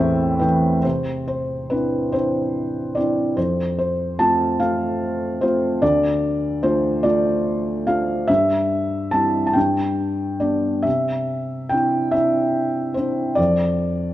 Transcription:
0.00 0.81 A1 medium
0.00 0.81 E2 medium
0.00 0.81 A2 medium
0.00 0.41 E3 soft
0.00 0.41 A3 soft
0.00 0.42 C4 medium
0.00 0.86 A4 medium
0.00 0.38 C5 medium
0.00 0.43 E5 medium
0.00 0.41 G5 medium
0.39 0.76 E3 soft
0.39 0.76 A3 soft
0.39 0.76 C4 soft
0.39 0.85 B4 medium
0.39 0.82 G5 soft
0.83 3.33 C3 soft
0.83 1.24 C5 medium
1.28 1.72 C5 medium
1.70 2.12 C4 soft
1.70 2.12 D4 soft
1.70 2.13 E4 soft
1.70 2.10 B4 medium
2.12 2.94 C4 soft
2.12 2.94 D4 soft
2.12 2.94 E4 soft
2.12 2.98 C5 medium
2.95 3.36 C4 soft
2.95 3.36 D4 soft
2.95 3.36 E4 soft
2.95 3.33 D5 medium
3.37 5.78 F2 soft
3.37 3.77 C5 medium
3.79 4.16 C5 medium
4.19 4.58 A3 soft
4.19 4.58 C4 soft
4.19 4.59 F4 soft
4.19 4.57 A5 medium
4.59 5.39 A3 soft
4.59 5.39 C4 soft
4.59 5.39 F4 soft
4.59 5.44 F5 medium
5.41 5.81 A3 soft
5.41 5.81 C4 soft
5.41 5.81 F4 soft
5.41 5.79 C5 medium
5.82 8.25 D2 medium
5.82 6.65 D5 medium
6.63 7.02 A3 soft
6.63 7.03 D4 soft
6.63 7.03 F4 soft
6.63 7.05 C5 medium
7.03 7.84 A3 soft
7.03 7.85 D4 soft
7.03 7.85 F4 soft
7.03 7.82 D5 medium
7.87 8.28 A3 soft
7.87 8.28 D4 soft
7.87 8.28 F4 soft
7.87 8.30 F5 medium
8.28 9.52 G2 medium
8.28 9.09 E5 medium
9.11 9.54 G3 soft
9.11 9.55 C4 soft
9.11 9.55 E4 soft
9.11 9.45 A5 medium
9.47 9.55 A5 medium
9.53 10.81 G2 medium
9.53 10.36 G5 medium
10.40 10.84 G3 soft
10.40 10.84 B3 soft
10.40 10.84 D4 soft
10.40 10.86 D5 medium
10.82 13.34 C3 soft
10.82 11.73 E5 medium
11.69 12.12 C4 soft
11.69 12.13 D4 soft
11.69 12.13 E4 soft
11.69 12.14 G5 medium
12.11 12.94 C4 soft
12.11 12.95 D4 soft
12.11 12.95 E4 soft
12.11 12.92 E5 medium
12.94 13.37 C4 soft
12.94 13.37 D4 soft
12.94 13.37 E4 soft
12.94 13.34 C5 medium
13.35 14.14 F2 soft
13.35 14.14 D5 medium

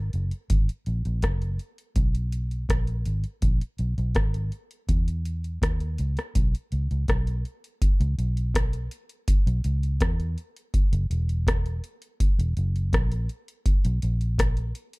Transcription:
0.00 0.11 G#1 medium
0.13 0.31 F#1 medium
0.13 closed hi-hat medium
0.31 closed hi-hat medium
0.50 0.68 G#1 medium
0.50 kick loud
0.50 closed hi-hat loud
0.69 closed hi-hat medium
0.86 1.04 A#1 medium
0.86 closed hi-hat medium
1.05 1.22 A#1 medium
1.05 closed hi-hat soft
1.22 1.57 F#1 medium
1.22 kick medium
1.22 cross-stick medium
1.22 closed hi-hat medium
1.42 closed hi-hat soft
1.59 closed hi-hat medium
1.78 closed hi-hat soft
1.96 2.65 B1 loud
1.96 kick loud
1.96 closed hi-hat medium
2.15 closed hi-hat medium
2.32 closed hi-hat medium
2.51 closed hi-hat soft
2.69 3.04 A#1 medium
2.69 kick loud
2.69 cross-stick loud
2.69 closed hi-hat loud
2.87 closed hi-hat soft
3.06 3.23 G#1 medium
3.06 closed hi-hat medium
3.24 closed hi-hat medium
3.42 3.60 A#1 medium
3.42 kick loud
3.42 closed hi-hat loud
3.61 closed hi-hat medium
3.78 3.97 B1 medium
3.78 closed hi-hat medium
3.98 4.15 B1 medium
3.98 closed hi-hat soft
4.15 4.50 G#1 medium
4.15 kick loud
4.15 cross-stick loud
4.15 closed hi-hat medium
4.34 closed hi-hat soft
4.52 closed hi-hat medium
4.71 closed hi-hat soft
4.89 5.58 E2 medium
4.89 kick loud
4.89 closed hi-hat medium
5.08 closed hi-hat medium
5.25 closed hi-hat medium
5.44 closed hi-hat soft
5.62 5.96 D#2 medium
5.62 kick loud
5.62 cross-stick loud
5.62 closed hi-hat medium
5.80 closed hi-hat soft
5.98 6.16 C#2 medium
5.98 closed hi-hat medium
6.17 cross-stick medium
6.17 closed hi-hat medium
6.35 6.53 B1 medium
6.35 kick loud
6.35 closed hi-hat loud
6.55 closed hi-hat medium
6.72 6.89 C#2 medium
6.72 closed hi-hat medium
6.91 7.07 C#2 medium
6.91 closed hi-hat soft
7.08 7.43 B1 medium
7.08 kick medium
7.08 cross-stick loud
7.08 closed hi-hat medium
7.27 closed hi-hat soft
7.45 closed hi-hat medium
7.64 closed hi-hat soft
7.82 kick loud
7.82 closed hi-hat medium
8.00 8.17 C#2 loud
8.00 closed hi-hat medium
8.18 8.87 B1 medium
8.18 closed hi-hat medium
8.37 closed hi-hat medium
8.55 kick loud
8.55 cross-stick loud
8.55 closed hi-hat loud
8.73 closed hi-hat medium
8.91 closed hi-hat medium
9.09 closed hi-hat medium
9.28 kick loud
9.28 closed hi-hat loud
9.47 9.63 B1 medium
9.47 closed hi-hat medium
9.64 9.98 C#2 medium
9.64 closed hi-hat medium
9.83 closed hi-hat soft
10.00 10.35 E2 medium
10.00 kick loud
10.00 cross-stick loud
10.00 closed hi-hat medium
10.20 closed hi-hat soft
10.38 closed hi-hat medium
10.56 closed hi-hat medium
10.74 kick loud
10.74 closed hi-hat medium
10.93 11.09 F#1 loud
10.93 closed hi-hat medium
11.10 11.79 E1 medium
11.10 closed hi-hat medium
11.29 closed hi-hat soft
11.47 kick loud
11.47 cross-stick loud
11.47 closed hi-hat loud
11.66 closed hi-hat soft
11.84 closed hi-hat medium
12.02 closed hi-hat medium
12.20 kick loud
12.20 closed hi-hat loud
12.39 12.55 E1 medium
12.39 closed hi-hat medium
12.57 12.91 F#1 medium
12.57 closed hi-hat medium
12.76 closed hi-hat medium
12.93 13.27 A#1 medium
12.93 kick loud
12.93 cross-stick loud
12.93 closed hi-hat medium
13.12 closed hi-hat soft
13.29 closed hi-hat medium
13.48 closed hi-hat medium
13.66 kick loud
13.66 closed hi-hat medium
13.85 14.01 B1 loud
13.85 closed hi-hat medium
14.02 14.72 A#1 medium
14.02 closed hi-hat medium
14.21 closed hi-hat medium
14.39 kick loud
14.39 cross-stick loud
14.39 closed hi-hat loud
14.57 closed hi-hat soft
14.75 closed hi-hat medium
14.93 closed hi-hat medium

